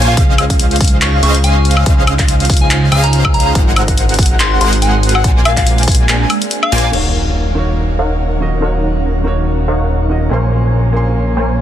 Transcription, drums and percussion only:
0.02 closed hi-hat
0.17 kick, closed hi-hat
0.38 closed hi-hat, high woodblock
0.50 kick, closed hi-hat
0.59 closed hi-hat
0.71 closed hi-hat
0.76 closed hi-hat
0.81 kick, closed hi-hat, open hi-hat
0.88 closed hi-hat
1.02 clap, closed hi-hat
1.23 closed hi-hat
1.35 closed hi-hat
1.44 closed hi-hat
1.65 closed hi-hat
1.71 closed hi-hat
1.77 high woodblock
1.86 kick, closed hi-hat
2.07 closed hi-hat, high woodblock
2.19 kick, clap, closed hi-hat
2.28 closed hi-hat
2.40 closed hi-hat
2.45 closed hi-hat
2.50 kick, closed hi-hat, open hi-hat
2.57 closed hi-hat
2.71 clap, closed hi-hat
2.92 closed hi-hat, high woodblock
3.04 closed hi-hat
3.13 closed hi-hat
3.25 kick, high woodblock
3.34 closed hi-hat
3.40 closed hi-hat
3.55 kick, closed hi-hat
3.76 closed hi-hat, high woodblock
3.88 kick, closed hi-hat
3.98 closed hi-hat
4.09 closed hi-hat
4.14 closed hi-hat
4.19 kick, closed hi-hat, open hi-hat
4.26 closed hi-hat
4.40 clap, closed hi-hat
4.61 closed hi-hat
4.73 closed hi-hat
4.82 closed hi-hat
5.03 closed hi-hat
5.09 closed hi-hat
5.15 high woodblock
5.24 kick, closed hi-hat
5.45 closed hi-hat, high woodblock
5.57 kick, clap, closed hi-hat
5.67 closed hi-hat
5.78 closed hi-hat
5.83 closed hi-hat
5.88 kick, closed hi-hat, open hi-hat
5.95 closed hi-hat
6.09 clap, closed hi-hat
6.30 closed hi-hat, high woodblock
6.42 closed hi-hat
6.51 closed hi-hat
6.63 high woodblock
6.72 closed hi-hat
6.78 closed hi-hat
6.93 crash

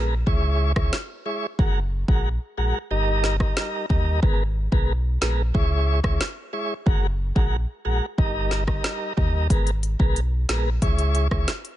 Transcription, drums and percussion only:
0.27 kick
0.76 kick, cross-stick
0.93 snare
1.59 kick
2.08 kick
3.24 snare
3.40 kick, cross-stick
3.57 snare
3.90 kick
4.23 kick
4.72 kick
5.22 snare
5.55 kick
6.04 kick, cross-stick
6.21 snare
6.87 kick
7.36 kick
8.18 kick
8.51 snare
8.68 kick, cross-stick
8.84 snare
9.17 kick
9.50 kick, closed hi-hat
9.67 closed hi-hat
9.83 closed hi-hat
10.00 kick
10.16 closed hi-hat
10.49 snare, closed hi-hat
10.82 kick, closed hi-hat
10.99 closed hi-hat
11.15 closed hi-hat
11.31 kick, cross-stick
11.48 snare, closed hi-hat
11.65 closed hi-hat

